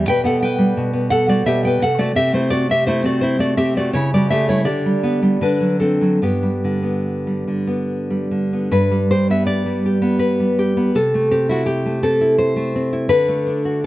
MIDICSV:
0, 0, Header, 1, 2, 480
1, 0, Start_track
1, 0, Key_signature, 1, "major"
1, 0, Tempo, 688073
1, 756, Tempo, 710059
1, 1234, Time_signature, 3, 2, 24, 8
1, 2676, Tempo, 748130
1, 3636, Tempo, 821918
1, 5556, Tempo, 739827
1, 7476, Tempo, 722892
1, 8934, End_track
2, 0, Start_track
2, 0, Title_t, "Nylon-string guitar"
2, 0, Program_c, 0, 24
2, 0, Note_on_c, 0, 55, 69
2, 55, Note_on_c, 0, 79, 110
2, 61, Note_on_c, 0, 47, 70
2, 65, Note_on_c, 0, 71, 84
2, 163, Note_off_c, 0, 71, 0
2, 166, Note_off_c, 0, 79, 0
2, 166, Note_on_c, 0, 59, 69
2, 174, Note_on_c, 0, 78, 95
2, 184, Note_on_c, 0, 69, 81
2, 283, Note_off_c, 0, 69, 0
2, 285, Note_off_c, 0, 78, 0
2, 297, Note_on_c, 0, 79, 110
2, 308, Note_on_c, 0, 71, 88
2, 399, Note_off_c, 0, 55, 0
2, 407, Note_on_c, 0, 55, 65
2, 530, Note_off_c, 0, 47, 0
2, 538, Note_on_c, 0, 47, 69
2, 643, Note_off_c, 0, 59, 0
2, 652, Note_on_c, 0, 59, 65
2, 743, Note_off_c, 0, 71, 0
2, 747, Note_off_c, 0, 79, 0
2, 770, Note_on_c, 0, 78, 107
2, 778, Note_on_c, 0, 69, 92
2, 878, Note_off_c, 0, 69, 0
2, 881, Note_off_c, 0, 55, 0
2, 881, Note_off_c, 0, 78, 0
2, 889, Note_on_c, 0, 55, 59
2, 898, Note_on_c, 0, 74, 83
2, 908, Note_on_c, 0, 66, 64
2, 1002, Note_off_c, 0, 47, 0
2, 1003, Note_off_c, 0, 66, 0
2, 1005, Note_off_c, 0, 74, 0
2, 1009, Note_on_c, 0, 47, 72
2, 1012, Note_on_c, 0, 76, 111
2, 1021, Note_on_c, 0, 67, 86
2, 1118, Note_off_c, 0, 59, 0
2, 1120, Note_off_c, 0, 67, 0
2, 1122, Note_off_c, 0, 76, 0
2, 1127, Note_on_c, 0, 59, 66
2, 1137, Note_on_c, 0, 79, 94
2, 1152, Note_on_c, 0, 71, 78
2, 1241, Note_off_c, 0, 59, 0
2, 1242, Note_off_c, 0, 55, 0
2, 1243, Note_off_c, 0, 47, 0
2, 1246, Note_off_c, 0, 79, 0
2, 1247, Note_off_c, 0, 71, 0
2, 1252, Note_on_c, 0, 48, 85
2, 1257, Note_on_c, 0, 78, 106
2, 1265, Note_on_c, 0, 69, 88
2, 1362, Note_off_c, 0, 69, 0
2, 1365, Note_on_c, 0, 57, 72
2, 1366, Note_off_c, 0, 78, 0
2, 1369, Note_on_c, 0, 74, 98
2, 1379, Note_on_c, 0, 66, 73
2, 1477, Note_off_c, 0, 57, 0
2, 1478, Note_off_c, 0, 66, 0
2, 1480, Note_on_c, 0, 60, 69
2, 1481, Note_off_c, 0, 74, 0
2, 1485, Note_on_c, 0, 76, 106
2, 1486, Note_on_c, 0, 67, 74
2, 1591, Note_off_c, 0, 67, 0
2, 1597, Note_off_c, 0, 76, 0
2, 1599, Note_on_c, 0, 57, 66
2, 1607, Note_on_c, 0, 72, 92
2, 1618, Note_on_c, 0, 64, 69
2, 1713, Note_off_c, 0, 64, 0
2, 1716, Note_on_c, 0, 74, 116
2, 1718, Note_off_c, 0, 72, 0
2, 1723, Note_on_c, 0, 66, 76
2, 1829, Note_off_c, 0, 66, 0
2, 1833, Note_off_c, 0, 74, 0
2, 1837, Note_off_c, 0, 60, 0
2, 1845, Note_on_c, 0, 60, 66
2, 1855, Note_on_c, 0, 76, 99
2, 1860, Note_on_c, 0, 67, 71
2, 1958, Note_off_c, 0, 67, 0
2, 1959, Note_off_c, 0, 57, 0
2, 1961, Note_on_c, 0, 72, 99
2, 1963, Note_off_c, 0, 76, 0
2, 1966, Note_on_c, 0, 57, 71
2, 1969, Note_on_c, 0, 64, 76
2, 2070, Note_off_c, 0, 60, 0
2, 2071, Note_off_c, 0, 64, 0
2, 2077, Note_off_c, 0, 72, 0
2, 2078, Note_on_c, 0, 60, 64
2, 2088, Note_on_c, 0, 66, 69
2, 2089, Note_on_c, 0, 74, 93
2, 2192, Note_off_c, 0, 66, 0
2, 2195, Note_on_c, 0, 72, 99
2, 2200, Note_off_c, 0, 74, 0
2, 2206, Note_on_c, 0, 64, 77
2, 2306, Note_off_c, 0, 57, 0
2, 2312, Note_off_c, 0, 64, 0
2, 2314, Note_off_c, 0, 72, 0
2, 2315, Note_on_c, 0, 57, 57
2, 2323, Note_on_c, 0, 74, 87
2, 2326, Note_on_c, 0, 66, 65
2, 2430, Note_off_c, 0, 60, 0
2, 2431, Note_off_c, 0, 66, 0
2, 2436, Note_off_c, 0, 74, 0
2, 2438, Note_on_c, 0, 60, 66
2, 2439, Note_on_c, 0, 76, 108
2, 2444, Note_on_c, 0, 67, 77
2, 2551, Note_off_c, 0, 67, 0
2, 2556, Note_off_c, 0, 76, 0
2, 2561, Note_off_c, 0, 57, 0
2, 2569, Note_on_c, 0, 57, 63
2, 2572, Note_on_c, 0, 74, 84
2, 2580, Note_on_c, 0, 66, 75
2, 2657, Note_off_c, 0, 48, 0
2, 2679, Note_off_c, 0, 60, 0
2, 2680, Note_off_c, 0, 74, 0
2, 2681, Note_off_c, 0, 66, 0
2, 2682, Note_on_c, 0, 73, 110
2, 2683, Note_off_c, 0, 57, 0
2, 2689, Note_on_c, 0, 49, 87
2, 2693, Note_on_c, 0, 64, 79
2, 2794, Note_off_c, 0, 64, 0
2, 2797, Note_off_c, 0, 73, 0
2, 2813, Note_on_c, 0, 55, 58
2, 2814, Note_on_c, 0, 74, 88
2, 2828, Note_on_c, 0, 66, 75
2, 2917, Note_off_c, 0, 74, 0
2, 2920, Note_on_c, 0, 76, 99
2, 2923, Note_off_c, 0, 66, 0
2, 2924, Note_on_c, 0, 57, 61
2, 2931, Note_on_c, 0, 67, 70
2, 3024, Note_off_c, 0, 55, 0
2, 3029, Note_off_c, 0, 67, 0
2, 3032, Note_on_c, 0, 55, 56
2, 3036, Note_off_c, 0, 76, 0
2, 3038, Note_on_c, 0, 73, 89
2, 3046, Note_on_c, 0, 64, 67
2, 3135, Note_off_c, 0, 57, 0
2, 3137, Note_on_c, 0, 50, 73
2, 3139, Note_off_c, 0, 73, 0
2, 3142, Note_on_c, 0, 74, 99
2, 3146, Note_off_c, 0, 49, 0
2, 3150, Note_off_c, 0, 55, 0
2, 3152, Note_off_c, 0, 64, 0
2, 3153, Note_on_c, 0, 67, 73
2, 3274, Note_on_c, 0, 55, 60
2, 3388, Note_on_c, 0, 59, 63
2, 3502, Note_off_c, 0, 55, 0
2, 3510, Note_on_c, 0, 55, 59
2, 3611, Note_off_c, 0, 67, 0
2, 3611, Note_off_c, 0, 74, 0
2, 3614, Note_off_c, 0, 50, 0
2, 3630, Note_on_c, 0, 50, 67
2, 3633, Note_off_c, 0, 59, 0
2, 3634, Note_off_c, 0, 55, 0
2, 3637, Note_on_c, 0, 71, 88
2, 3640, Note_on_c, 0, 62, 69
2, 3743, Note_on_c, 0, 54, 48
2, 3849, Note_off_c, 0, 62, 0
2, 3854, Note_off_c, 0, 71, 0
2, 3856, Note_on_c, 0, 69, 67
2, 3862, Note_on_c, 0, 60, 56
2, 3975, Note_off_c, 0, 54, 0
2, 3982, Note_on_c, 0, 54, 49
2, 4085, Note_off_c, 0, 60, 0
2, 4086, Note_off_c, 0, 50, 0
2, 4090, Note_off_c, 0, 69, 0
2, 4100, Note_off_c, 0, 54, 0
2, 4102, Note_on_c, 0, 43, 59
2, 4106, Note_on_c, 0, 59, 54
2, 4110, Note_on_c, 0, 67, 68
2, 4224, Note_on_c, 0, 55, 49
2, 4350, Note_on_c, 0, 50, 47
2, 4451, Note_off_c, 0, 59, 0
2, 4458, Note_on_c, 0, 59, 48
2, 4709, Note_off_c, 0, 55, 0
2, 4716, Note_on_c, 0, 55, 45
2, 4829, Note_off_c, 0, 50, 0
2, 4836, Note_on_c, 0, 50, 50
2, 4945, Note_off_c, 0, 59, 0
2, 4952, Note_on_c, 0, 59, 52
2, 5196, Note_off_c, 0, 55, 0
2, 5203, Note_on_c, 0, 55, 43
2, 5298, Note_off_c, 0, 67, 0
2, 5318, Note_off_c, 0, 50, 0
2, 5325, Note_on_c, 0, 50, 46
2, 5445, Note_off_c, 0, 59, 0
2, 5452, Note_on_c, 0, 59, 51
2, 5532, Note_off_c, 0, 43, 0
2, 5559, Note_off_c, 0, 50, 0
2, 5560, Note_off_c, 0, 55, 0
2, 5560, Note_on_c, 0, 43, 71
2, 5562, Note_off_c, 0, 59, 0
2, 5563, Note_on_c, 0, 71, 92
2, 5690, Note_on_c, 0, 55, 60
2, 5797, Note_off_c, 0, 71, 0
2, 5816, Note_on_c, 0, 72, 88
2, 5821, Note_on_c, 0, 67, 60
2, 5932, Note_off_c, 0, 72, 0
2, 5939, Note_on_c, 0, 59, 54
2, 5946, Note_on_c, 0, 76, 78
2, 6045, Note_off_c, 0, 76, 0
2, 6048, Note_on_c, 0, 74, 100
2, 6165, Note_off_c, 0, 55, 0
2, 6173, Note_on_c, 0, 55, 57
2, 6293, Note_off_c, 0, 67, 0
2, 6301, Note_on_c, 0, 67, 63
2, 6398, Note_off_c, 0, 59, 0
2, 6405, Note_on_c, 0, 59, 63
2, 6498, Note_off_c, 0, 74, 0
2, 6520, Note_on_c, 0, 71, 93
2, 6645, Note_off_c, 0, 55, 0
2, 6653, Note_on_c, 0, 55, 53
2, 6768, Note_off_c, 0, 67, 0
2, 6776, Note_on_c, 0, 67, 68
2, 6885, Note_off_c, 0, 59, 0
2, 6893, Note_on_c, 0, 59, 59
2, 6974, Note_off_c, 0, 43, 0
2, 6980, Note_off_c, 0, 71, 0
2, 7005, Note_off_c, 0, 59, 0
2, 7006, Note_off_c, 0, 55, 0
2, 7008, Note_off_c, 0, 67, 0
2, 7012, Note_on_c, 0, 48, 73
2, 7015, Note_on_c, 0, 69, 98
2, 7136, Note_on_c, 0, 57, 62
2, 7237, Note_off_c, 0, 69, 0
2, 7246, Note_on_c, 0, 60, 61
2, 7246, Note_on_c, 0, 67, 85
2, 7360, Note_off_c, 0, 67, 0
2, 7363, Note_on_c, 0, 64, 60
2, 7373, Note_on_c, 0, 66, 86
2, 7469, Note_off_c, 0, 66, 0
2, 7472, Note_on_c, 0, 67, 100
2, 7594, Note_off_c, 0, 57, 0
2, 7602, Note_on_c, 0, 57, 57
2, 7705, Note_off_c, 0, 67, 0
2, 7709, Note_off_c, 0, 60, 0
2, 7715, Note_off_c, 0, 64, 0
2, 7716, Note_on_c, 0, 60, 65
2, 7718, Note_on_c, 0, 69, 95
2, 7837, Note_on_c, 0, 64, 60
2, 7945, Note_off_c, 0, 69, 0
2, 7952, Note_on_c, 0, 72, 104
2, 8063, Note_off_c, 0, 57, 0
2, 8070, Note_on_c, 0, 57, 53
2, 8191, Note_off_c, 0, 60, 0
2, 8199, Note_on_c, 0, 60, 63
2, 8304, Note_off_c, 0, 64, 0
2, 8312, Note_on_c, 0, 64, 63
2, 8409, Note_off_c, 0, 72, 0
2, 8411, Note_off_c, 0, 48, 0
2, 8418, Note_off_c, 0, 57, 0
2, 8420, Note_on_c, 0, 50, 82
2, 8422, Note_on_c, 0, 71, 110
2, 8431, Note_off_c, 0, 64, 0
2, 8433, Note_off_c, 0, 60, 0
2, 8550, Note_on_c, 0, 57, 58
2, 8671, Note_on_c, 0, 62, 66
2, 8791, Note_off_c, 0, 71, 0
2, 8794, Note_on_c, 0, 66, 64
2, 8918, Note_off_c, 0, 66, 0
2, 8934, Note_off_c, 0, 50, 0
2, 8934, Note_off_c, 0, 57, 0
2, 8934, Note_off_c, 0, 62, 0
2, 8934, End_track
0, 0, End_of_file